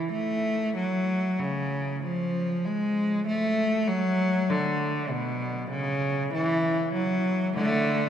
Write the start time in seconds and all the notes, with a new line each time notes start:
0.12 A3
0.76 F#3
1.39 C#3
2.04 F3
2.65 G#3
3.26 A3
3.87 F#3
4.49 D3
5.11 B2
5.70 C#3
6.33 E3
6.93 F#3
7.55 D3 A3